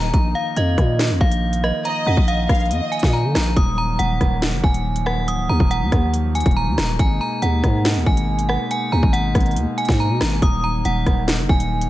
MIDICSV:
0, 0, Header, 1, 6, 480
1, 0, Start_track
1, 0, Key_signature, -6, "minor"
1, 0, Tempo, 428571
1, 152, Time_signature, 4, 2, 24, 8
1, 13324, End_track
2, 0, Start_track
2, 0, Title_t, "Synth bell"
2, 0, Program_c, 0, 98
2, 0, Note_on_c, 0, 82, 80
2, 142, Note_off_c, 0, 82, 0
2, 154, Note_on_c, 0, 82, 81
2, 379, Note_off_c, 0, 82, 0
2, 393, Note_on_c, 0, 77, 84
2, 618, Note_off_c, 0, 77, 0
2, 640, Note_on_c, 0, 75, 87
2, 1088, Note_off_c, 0, 75, 0
2, 1354, Note_on_c, 0, 77, 87
2, 1805, Note_off_c, 0, 77, 0
2, 1836, Note_on_c, 0, 75, 79
2, 2060, Note_off_c, 0, 75, 0
2, 2074, Note_on_c, 0, 82, 86
2, 2299, Note_off_c, 0, 82, 0
2, 2322, Note_on_c, 0, 78, 76
2, 2543, Note_off_c, 0, 78, 0
2, 2553, Note_on_c, 0, 77, 92
2, 3004, Note_off_c, 0, 77, 0
2, 3267, Note_on_c, 0, 80, 80
2, 3495, Note_off_c, 0, 80, 0
2, 3509, Note_on_c, 0, 82, 76
2, 3736, Note_off_c, 0, 82, 0
2, 3758, Note_on_c, 0, 82, 76
2, 3981, Note_off_c, 0, 82, 0
2, 3995, Note_on_c, 0, 87, 80
2, 4219, Note_off_c, 0, 87, 0
2, 4233, Note_on_c, 0, 82, 83
2, 4458, Note_off_c, 0, 82, 0
2, 4468, Note_on_c, 0, 78, 88
2, 4922, Note_off_c, 0, 78, 0
2, 5196, Note_on_c, 0, 80, 84
2, 5646, Note_off_c, 0, 80, 0
2, 5668, Note_on_c, 0, 78, 80
2, 5896, Note_off_c, 0, 78, 0
2, 5914, Note_on_c, 0, 87, 93
2, 6139, Note_off_c, 0, 87, 0
2, 6154, Note_on_c, 0, 82, 82
2, 6379, Note_off_c, 0, 82, 0
2, 6393, Note_on_c, 0, 78, 85
2, 6844, Note_off_c, 0, 78, 0
2, 7114, Note_on_c, 0, 80, 79
2, 7339, Note_off_c, 0, 80, 0
2, 7353, Note_on_c, 0, 82, 82
2, 7578, Note_off_c, 0, 82, 0
2, 7596, Note_on_c, 0, 82, 73
2, 7820, Note_off_c, 0, 82, 0
2, 7838, Note_on_c, 0, 80, 86
2, 8061, Note_off_c, 0, 80, 0
2, 8074, Note_on_c, 0, 82, 83
2, 8299, Note_off_c, 0, 82, 0
2, 8315, Note_on_c, 0, 78, 79
2, 8765, Note_off_c, 0, 78, 0
2, 9033, Note_on_c, 0, 80, 82
2, 9484, Note_off_c, 0, 80, 0
2, 9506, Note_on_c, 0, 78, 74
2, 9734, Note_off_c, 0, 78, 0
2, 9756, Note_on_c, 0, 80, 91
2, 9980, Note_off_c, 0, 80, 0
2, 9994, Note_on_c, 0, 82, 78
2, 10219, Note_off_c, 0, 82, 0
2, 10226, Note_on_c, 0, 78, 90
2, 10680, Note_off_c, 0, 78, 0
2, 10951, Note_on_c, 0, 80, 86
2, 11177, Note_off_c, 0, 80, 0
2, 11201, Note_on_c, 0, 82, 79
2, 11422, Note_off_c, 0, 82, 0
2, 11437, Note_on_c, 0, 82, 76
2, 11660, Note_off_c, 0, 82, 0
2, 11678, Note_on_c, 0, 87, 89
2, 11901, Note_off_c, 0, 87, 0
2, 11914, Note_on_c, 0, 82, 84
2, 12139, Note_off_c, 0, 82, 0
2, 12155, Note_on_c, 0, 78, 89
2, 12605, Note_off_c, 0, 78, 0
2, 12875, Note_on_c, 0, 80, 77
2, 13324, Note_off_c, 0, 80, 0
2, 13324, End_track
3, 0, Start_track
3, 0, Title_t, "Violin section"
3, 0, Program_c, 1, 48
3, 2075, Note_on_c, 1, 75, 111
3, 2751, Note_off_c, 1, 75, 0
3, 2791, Note_on_c, 1, 77, 91
3, 3020, Note_off_c, 1, 77, 0
3, 3032, Note_on_c, 1, 75, 95
3, 3484, Note_off_c, 1, 75, 0
3, 13324, End_track
4, 0, Start_track
4, 0, Title_t, "Pipe organ"
4, 0, Program_c, 2, 19
4, 0, Note_on_c, 2, 51, 70
4, 0, Note_on_c, 2, 54, 64
4, 0, Note_on_c, 2, 63, 79
4, 114, Note_off_c, 2, 54, 0
4, 153, Note_on_c, 2, 53, 65
4, 153, Note_on_c, 2, 58, 64
4, 3948, Note_off_c, 2, 51, 0
4, 3948, Note_off_c, 2, 63, 0
4, 3954, Note_off_c, 2, 58, 0
4, 3955, Note_off_c, 2, 53, 0
4, 3993, Note_on_c, 2, 54, 64
4, 3993, Note_on_c, 2, 58, 63
4, 3994, Note_on_c, 2, 51, 71
4, 3994, Note_on_c, 2, 53, 80
4, 7795, Note_off_c, 2, 51, 0
4, 7795, Note_off_c, 2, 53, 0
4, 7795, Note_off_c, 2, 54, 0
4, 7795, Note_off_c, 2, 58, 0
4, 7833, Note_on_c, 2, 47, 73
4, 7833, Note_on_c, 2, 56, 62
4, 7833, Note_on_c, 2, 58, 64
4, 7833, Note_on_c, 2, 63, 76
4, 11635, Note_off_c, 2, 47, 0
4, 11635, Note_off_c, 2, 56, 0
4, 11635, Note_off_c, 2, 63, 0
4, 11673, Note_on_c, 2, 51, 68
4, 11673, Note_on_c, 2, 63, 79
4, 11674, Note_on_c, 2, 54, 63
4, 13324, Note_off_c, 2, 51, 0
4, 13324, Note_off_c, 2, 54, 0
4, 13324, Note_off_c, 2, 58, 0
4, 13324, Note_off_c, 2, 63, 0
4, 13324, End_track
5, 0, Start_track
5, 0, Title_t, "808-style bass"
5, 0, Program_c, 3, 38
5, 0, Note_on_c, 3, 27, 107
5, 143, Note_off_c, 3, 27, 0
5, 153, Note_on_c, 3, 34, 111
5, 383, Note_off_c, 3, 34, 0
5, 633, Note_on_c, 3, 41, 107
5, 863, Note_off_c, 3, 41, 0
5, 873, Note_on_c, 3, 46, 111
5, 1232, Note_on_c, 3, 41, 100
5, 1249, Note_off_c, 3, 46, 0
5, 1346, Note_off_c, 3, 41, 0
5, 1352, Note_on_c, 3, 34, 106
5, 1929, Note_off_c, 3, 34, 0
5, 2313, Note_on_c, 3, 41, 107
5, 2428, Note_off_c, 3, 41, 0
5, 2434, Note_on_c, 3, 34, 99
5, 2779, Note_off_c, 3, 34, 0
5, 2793, Note_on_c, 3, 34, 113
5, 3033, Note_on_c, 3, 41, 99
5, 3050, Note_off_c, 3, 34, 0
5, 3147, Note_off_c, 3, 41, 0
5, 3393, Note_on_c, 3, 46, 107
5, 3633, Note_on_c, 3, 50, 101
5, 3650, Note_off_c, 3, 46, 0
5, 3747, Note_off_c, 3, 50, 0
5, 3753, Note_on_c, 3, 34, 109
5, 3983, Note_off_c, 3, 34, 0
5, 3993, Note_on_c, 3, 27, 114
5, 4454, Note_off_c, 3, 27, 0
5, 4473, Note_on_c, 3, 27, 105
5, 4703, Note_off_c, 3, 27, 0
5, 4713, Note_on_c, 3, 27, 109
5, 5073, Note_on_c, 3, 30, 100
5, 5089, Note_off_c, 3, 27, 0
5, 5187, Note_off_c, 3, 30, 0
5, 5192, Note_on_c, 3, 27, 106
5, 5913, Note_on_c, 3, 26, 101
5, 5930, Note_off_c, 3, 27, 0
5, 6141, Note_off_c, 3, 26, 0
5, 6152, Note_on_c, 3, 39, 107
5, 6268, Note_off_c, 3, 39, 0
5, 6273, Note_on_c, 3, 27, 108
5, 6512, Note_on_c, 3, 39, 101
5, 6529, Note_off_c, 3, 27, 0
5, 6626, Note_off_c, 3, 39, 0
5, 6633, Note_on_c, 3, 39, 107
5, 7209, Note_off_c, 3, 39, 0
5, 7233, Note_on_c, 3, 27, 109
5, 7473, Note_on_c, 3, 39, 103
5, 7489, Note_off_c, 3, 27, 0
5, 7587, Note_off_c, 3, 39, 0
5, 7593, Note_on_c, 3, 27, 105
5, 7823, Note_off_c, 3, 27, 0
5, 7833, Note_on_c, 3, 32, 111
5, 8063, Note_off_c, 3, 32, 0
5, 8313, Note_on_c, 3, 39, 108
5, 8543, Note_off_c, 3, 39, 0
5, 8552, Note_on_c, 3, 44, 113
5, 8913, Note_on_c, 3, 39, 101
5, 8930, Note_off_c, 3, 44, 0
5, 9027, Note_off_c, 3, 39, 0
5, 9032, Note_on_c, 3, 32, 103
5, 9608, Note_off_c, 3, 32, 0
5, 9993, Note_on_c, 3, 39, 110
5, 10108, Note_off_c, 3, 39, 0
5, 10113, Note_on_c, 3, 32, 99
5, 10458, Note_off_c, 3, 32, 0
5, 10473, Note_on_c, 3, 32, 109
5, 10713, Note_on_c, 3, 39, 99
5, 10730, Note_off_c, 3, 32, 0
5, 10827, Note_off_c, 3, 39, 0
5, 11073, Note_on_c, 3, 44, 109
5, 11313, Note_on_c, 3, 47, 101
5, 11329, Note_off_c, 3, 44, 0
5, 11427, Note_off_c, 3, 47, 0
5, 11433, Note_on_c, 3, 32, 106
5, 11663, Note_off_c, 3, 32, 0
5, 11673, Note_on_c, 3, 27, 111
5, 12134, Note_off_c, 3, 27, 0
5, 12152, Note_on_c, 3, 27, 109
5, 12383, Note_off_c, 3, 27, 0
5, 12393, Note_on_c, 3, 27, 111
5, 12753, Note_on_c, 3, 30, 101
5, 12770, Note_off_c, 3, 27, 0
5, 12867, Note_off_c, 3, 30, 0
5, 12872, Note_on_c, 3, 27, 107
5, 13324, Note_off_c, 3, 27, 0
5, 13324, End_track
6, 0, Start_track
6, 0, Title_t, "Drums"
6, 153, Note_on_c, 9, 36, 127
6, 153, Note_on_c, 9, 42, 78
6, 265, Note_off_c, 9, 36, 0
6, 265, Note_off_c, 9, 42, 0
6, 633, Note_on_c, 9, 42, 68
6, 745, Note_off_c, 9, 42, 0
6, 873, Note_on_c, 9, 36, 85
6, 873, Note_on_c, 9, 37, 89
6, 873, Note_on_c, 9, 42, 54
6, 985, Note_off_c, 9, 36, 0
6, 985, Note_off_c, 9, 37, 0
6, 985, Note_off_c, 9, 42, 0
6, 1112, Note_on_c, 9, 38, 127
6, 1113, Note_on_c, 9, 42, 87
6, 1224, Note_off_c, 9, 38, 0
6, 1225, Note_off_c, 9, 42, 0
6, 1352, Note_on_c, 9, 36, 108
6, 1464, Note_off_c, 9, 36, 0
6, 1473, Note_on_c, 9, 42, 89
6, 1585, Note_off_c, 9, 42, 0
6, 1713, Note_on_c, 9, 42, 75
6, 1825, Note_off_c, 9, 42, 0
6, 1833, Note_on_c, 9, 37, 92
6, 1945, Note_off_c, 9, 37, 0
6, 2073, Note_on_c, 9, 42, 75
6, 2185, Note_off_c, 9, 42, 0
6, 2433, Note_on_c, 9, 36, 90
6, 2545, Note_off_c, 9, 36, 0
6, 2553, Note_on_c, 9, 42, 68
6, 2665, Note_off_c, 9, 42, 0
6, 2793, Note_on_c, 9, 36, 85
6, 2793, Note_on_c, 9, 37, 89
6, 2793, Note_on_c, 9, 42, 54
6, 2853, Note_off_c, 9, 42, 0
6, 2853, Note_on_c, 9, 42, 46
6, 2905, Note_off_c, 9, 36, 0
6, 2905, Note_off_c, 9, 37, 0
6, 2913, Note_off_c, 9, 42, 0
6, 2913, Note_on_c, 9, 42, 39
6, 2973, Note_off_c, 9, 42, 0
6, 2973, Note_on_c, 9, 42, 33
6, 3033, Note_off_c, 9, 42, 0
6, 3033, Note_on_c, 9, 42, 88
6, 3145, Note_off_c, 9, 42, 0
6, 3273, Note_on_c, 9, 42, 43
6, 3353, Note_off_c, 9, 42, 0
6, 3353, Note_on_c, 9, 42, 58
6, 3393, Note_on_c, 9, 36, 86
6, 3393, Note_on_c, 9, 38, 70
6, 3433, Note_off_c, 9, 42, 0
6, 3433, Note_on_c, 9, 42, 71
6, 3505, Note_off_c, 9, 36, 0
6, 3505, Note_off_c, 9, 38, 0
6, 3545, Note_off_c, 9, 42, 0
6, 3753, Note_on_c, 9, 46, 54
6, 3754, Note_on_c, 9, 37, 93
6, 3754, Note_on_c, 9, 38, 110
6, 3865, Note_off_c, 9, 46, 0
6, 3866, Note_off_c, 9, 37, 0
6, 3866, Note_off_c, 9, 38, 0
6, 3993, Note_on_c, 9, 36, 123
6, 3993, Note_on_c, 9, 42, 77
6, 4105, Note_off_c, 9, 36, 0
6, 4105, Note_off_c, 9, 42, 0
6, 4473, Note_on_c, 9, 42, 68
6, 4585, Note_off_c, 9, 42, 0
6, 4713, Note_on_c, 9, 36, 85
6, 4713, Note_on_c, 9, 37, 89
6, 4713, Note_on_c, 9, 42, 53
6, 4825, Note_off_c, 9, 36, 0
6, 4825, Note_off_c, 9, 37, 0
6, 4825, Note_off_c, 9, 42, 0
6, 4952, Note_on_c, 9, 38, 127
6, 4953, Note_on_c, 9, 42, 89
6, 5064, Note_off_c, 9, 38, 0
6, 5065, Note_off_c, 9, 42, 0
6, 5192, Note_on_c, 9, 36, 104
6, 5304, Note_off_c, 9, 36, 0
6, 5313, Note_on_c, 9, 42, 88
6, 5425, Note_off_c, 9, 42, 0
6, 5553, Note_on_c, 9, 42, 75
6, 5665, Note_off_c, 9, 42, 0
6, 5673, Note_on_c, 9, 37, 96
6, 5785, Note_off_c, 9, 37, 0
6, 5913, Note_on_c, 9, 42, 79
6, 6025, Note_off_c, 9, 42, 0
6, 6273, Note_on_c, 9, 36, 91
6, 6385, Note_off_c, 9, 36, 0
6, 6393, Note_on_c, 9, 42, 69
6, 6505, Note_off_c, 9, 42, 0
6, 6633, Note_on_c, 9, 36, 84
6, 6633, Note_on_c, 9, 37, 90
6, 6633, Note_on_c, 9, 42, 53
6, 6745, Note_off_c, 9, 36, 0
6, 6745, Note_off_c, 9, 37, 0
6, 6745, Note_off_c, 9, 42, 0
6, 6873, Note_on_c, 9, 42, 91
6, 6985, Note_off_c, 9, 42, 0
6, 7113, Note_on_c, 9, 42, 68
6, 7173, Note_off_c, 9, 42, 0
6, 7173, Note_on_c, 9, 42, 60
6, 7233, Note_off_c, 9, 42, 0
6, 7233, Note_on_c, 9, 36, 89
6, 7233, Note_on_c, 9, 42, 52
6, 7293, Note_off_c, 9, 42, 0
6, 7293, Note_on_c, 9, 42, 43
6, 7345, Note_off_c, 9, 36, 0
6, 7405, Note_off_c, 9, 42, 0
6, 7593, Note_on_c, 9, 37, 95
6, 7593, Note_on_c, 9, 38, 117
6, 7593, Note_on_c, 9, 42, 76
6, 7705, Note_off_c, 9, 37, 0
6, 7705, Note_off_c, 9, 38, 0
6, 7705, Note_off_c, 9, 42, 0
6, 7833, Note_on_c, 9, 36, 126
6, 7833, Note_on_c, 9, 42, 76
6, 7945, Note_off_c, 9, 36, 0
6, 7945, Note_off_c, 9, 42, 0
6, 8313, Note_on_c, 9, 42, 68
6, 8425, Note_off_c, 9, 42, 0
6, 8553, Note_on_c, 9, 36, 85
6, 8553, Note_on_c, 9, 37, 94
6, 8553, Note_on_c, 9, 42, 54
6, 8665, Note_off_c, 9, 36, 0
6, 8665, Note_off_c, 9, 37, 0
6, 8665, Note_off_c, 9, 42, 0
6, 8792, Note_on_c, 9, 38, 125
6, 8792, Note_on_c, 9, 42, 88
6, 8904, Note_off_c, 9, 38, 0
6, 8904, Note_off_c, 9, 42, 0
6, 9032, Note_on_c, 9, 36, 110
6, 9144, Note_off_c, 9, 36, 0
6, 9153, Note_on_c, 9, 42, 92
6, 9265, Note_off_c, 9, 42, 0
6, 9393, Note_on_c, 9, 42, 76
6, 9505, Note_off_c, 9, 42, 0
6, 9513, Note_on_c, 9, 37, 93
6, 9625, Note_off_c, 9, 37, 0
6, 9753, Note_on_c, 9, 42, 79
6, 9865, Note_off_c, 9, 42, 0
6, 10113, Note_on_c, 9, 36, 93
6, 10225, Note_off_c, 9, 36, 0
6, 10233, Note_on_c, 9, 42, 67
6, 10345, Note_off_c, 9, 42, 0
6, 10472, Note_on_c, 9, 36, 86
6, 10473, Note_on_c, 9, 37, 90
6, 10473, Note_on_c, 9, 42, 54
6, 10533, Note_off_c, 9, 42, 0
6, 10533, Note_on_c, 9, 42, 47
6, 10584, Note_off_c, 9, 36, 0
6, 10585, Note_off_c, 9, 37, 0
6, 10593, Note_off_c, 9, 42, 0
6, 10593, Note_on_c, 9, 42, 40
6, 10652, Note_off_c, 9, 42, 0
6, 10652, Note_on_c, 9, 42, 31
6, 10712, Note_off_c, 9, 42, 0
6, 10712, Note_on_c, 9, 42, 90
6, 10824, Note_off_c, 9, 42, 0
6, 10952, Note_on_c, 9, 42, 43
6, 11032, Note_off_c, 9, 42, 0
6, 11032, Note_on_c, 9, 42, 57
6, 11072, Note_on_c, 9, 38, 72
6, 11073, Note_on_c, 9, 36, 85
6, 11112, Note_off_c, 9, 42, 0
6, 11112, Note_on_c, 9, 42, 74
6, 11184, Note_off_c, 9, 38, 0
6, 11185, Note_off_c, 9, 36, 0
6, 11224, Note_off_c, 9, 42, 0
6, 11432, Note_on_c, 9, 46, 56
6, 11433, Note_on_c, 9, 37, 97
6, 11433, Note_on_c, 9, 38, 117
6, 11544, Note_off_c, 9, 46, 0
6, 11545, Note_off_c, 9, 37, 0
6, 11545, Note_off_c, 9, 38, 0
6, 11672, Note_on_c, 9, 42, 78
6, 11673, Note_on_c, 9, 36, 127
6, 11784, Note_off_c, 9, 42, 0
6, 11785, Note_off_c, 9, 36, 0
6, 12152, Note_on_c, 9, 42, 69
6, 12264, Note_off_c, 9, 42, 0
6, 12393, Note_on_c, 9, 36, 86
6, 12393, Note_on_c, 9, 37, 91
6, 12393, Note_on_c, 9, 42, 52
6, 12505, Note_off_c, 9, 36, 0
6, 12505, Note_off_c, 9, 37, 0
6, 12505, Note_off_c, 9, 42, 0
6, 12632, Note_on_c, 9, 38, 127
6, 12633, Note_on_c, 9, 42, 89
6, 12744, Note_off_c, 9, 38, 0
6, 12745, Note_off_c, 9, 42, 0
6, 12872, Note_on_c, 9, 36, 108
6, 12984, Note_off_c, 9, 36, 0
6, 12993, Note_on_c, 9, 42, 92
6, 13105, Note_off_c, 9, 42, 0
6, 13232, Note_on_c, 9, 42, 79
6, 13324, Note_off_c, 9, 42, 0
6, 13324, End_track
0, 0, End_of_file